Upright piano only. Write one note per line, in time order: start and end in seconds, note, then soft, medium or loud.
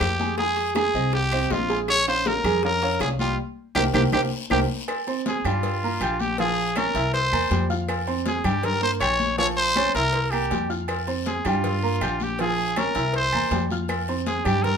0.00 0.13 A#3 medium
0.00 0.13 A#4 medium
0.00 0.13 C5 medium
0.20 0.35 G#3 medium
0.20 0.35 G#4 medium
0.20 0.35 G#5 medium
0.39 0.70 G#3 medium
0.39 0.70 G#4 medium
0.39 0.70 G#5 medium
0.76 0.91 G#3 medium
0.76 0.91 G#4 medium
0.76 0.91 G#5 medium
0.95 1.25 C4 medium
0.95 1.26 C5 medium
0.95 1.25 D#5 medium
1.32 1.47 C4 medium
1.32 1.47 C5 medium
1.32 1.48 D#5 medium
1.51 1.66 C4 medium
1.51 1.66 C5 medium
1.51 1.67 D#5 medium
1.70 2.00 G#3 medium
1.70 2.00 G#4 medium
1.70 2.01 G#5 medium
2.08 2.38 C#4 medium
2.08 2.38 C#5 medium
2.08 2.38 F5 medium
2.45 2.60 G#3 medium
2.45 2.60 G#4 medium
2.45 2.61 G#5 medium
2.64 2.79 C#4 medium
2.64 2.79 C#5 medium
2.64 2.79 F5 medium
2.82 3.13 C#4 medium
2.82 3.13 C#5 medium
2.82 3.13 F5 medium
3.21 3.35 G3 medium
3.21 3.35 G4 medium
3.21 3.36 G5 medium
3.76 3.88 G4 loud
3.76 3.88 A#4 loud
3.76 3.88 C5 medium
3.94 4.06 G4 loud
3.94 4.06 A#4 medium
3.94 4.06 C5 loud
4.14 4.26 G4 medium
4.14 4.26 A#4 medium
4.14 4.25 C5 medium
4.51 4.63 G4 loud
4.51 4.63 A#4 loud
4.51 4.63 C5 loud
5.07 5.38 C4 medium
5.07 5.38 C5 medium
5.07 5.38 C6 medium
5.45 5.76 G3 medium
5.45 5.76 G4 medium
5.45 5.76 G5 medium
5.84 5.98 A#3 medium
5.84 5.98 A#4 medium
5.84 5.98 A#5 medium
6.02 6.32 G4 medium
6.02 6.32 G5 medium
6.02 6.33 G6 medium
6.39 6.70 F3 medium
6.39 6.70 F4 medium
6.39 6.70 F5 medium
6.77 6.92 C#4 medium
6.77 6.92 C#5 medium
6.77 6.92 C#6 medium
6.95 7.26 E4 medium
6.95 7.26 E5 medium
6.95 7.26 E6 medium
7.32 7.47 A#3 medium
7.32 7.48 A#4 medium
7.32 7.48 A#5 medium
7.51 7.66 G3 medium
7.51 7.67 G4 medium
7.51 7.67 G5 medium
7.70 8.00 F4 medium
7.70 8.01 F5 medium
7.70 8.01 F6 medium
8.08 8.38 C4 medium
8.08 8.38 C5 medium
8.08 8.38 C6 medium
8.44 8.75 G3 medium
8.44 8.76 G4 medium
8.44 8.76 G5 medium
8.81 8.97 A#3 medium
8.81 8.97 A#4 medium
8.81 8.97 A#5 medium
9.01 9.32 G4 medium
9.01 9.32 G5 medium
9.01 9.32 G6 medium
9.38 9.69 F3 medium
9.38 9.69 F4 medium
9.38 9.69 F5 medium
9.76 9.92 C#4 medium
9.76 9.92 C#5 medium
9.76 9.92 C#6 medium
9.96 10.26 E4 medium
9.96 10.26 E5 medium
9.96 10.27 E6 medium
10.33 10.48 A#3 medium
10.33 10.48 A#4 medium
10.33 10.48 A#5 medium
10.51 10.66 G3 medium
10.51 10.67 G4 medium
10.51 10.67 G5 medium
10.70 11.01 F4 medium
10.70 11.01 F5 medium
10.70 11.01 F6 medium
11.07 11.38 C4 medium
11.07 11.38 C5 medium
11.07 11.38 C6 medium
11.46 11.76 G3 medium
11.46 11.76 G4 medium
11.46 11.76 G5 medium
11.83 11.98 A#3 medium
11.83 11.99 A#4 medium
11.83 11.98 A#5 medium
12.02 12.33 G4 medium
12.02 12.33 G5 medium
12.02 12.33 G6 medium
12.40 12.70 F3 medium
12.40 12.71 F4 medium
12.40 12.71 F5 medium
12.77 12.92 C#4 medium
12.77 12.93 C#5 medium
12.77 12.92 C#6 medium
12.95 13.26 E4 medium
12.95 13.26 E5 medium
12.95 13.26 E6 medium
13.34 13.49 A#3 medium
13.34 13.49 A#4 medium
13.34 13.49 A#5 medium
13.52 13.67 G3 medium
13.52 13.67 G4 medium
13.52 13.68 G5 medium
13.71 14.02 F4 medium
13.71 14.02 F5 medium
13.71 14.02 F6 medium
14.09 14.39 C4 medium
14.09 14.39 C5 medium
14.09 14.39 C6 medium
14.45 14.76 G3 medium
14.45 14.76 G4 medium
14.45 14.76 G5 medium